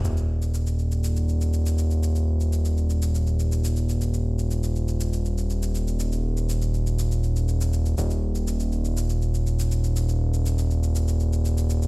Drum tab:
SH |xx-xxxxxxxxxxxxx|xx-xxxxxxxxxxxxx|xx-xxxxxxxxxxxxx|xx-xxxxxxxxxxxxx|

SH |xx-xxxxxxxxxxxxx|xx-xxxxxxxxxxxxx|